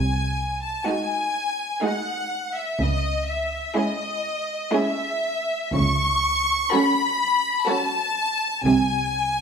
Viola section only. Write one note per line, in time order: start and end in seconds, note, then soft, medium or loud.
0.87 1.61 G#3 soft
0.87 1.61 D#4 soft
1.83 2.58 G#3 soft
1.83 2.57 D#4 soft
3.77 4.49 G#3 soft
3.77 4.49 C#4 soft
4.73 5.51 G#3 medium
4.73 5.51 C#4 soft
6.73 7.45 F#3 soft
6.73 7.45 C#4 soft
7.68 8.42 F#3 medium
7.68 8.42 C#4 medium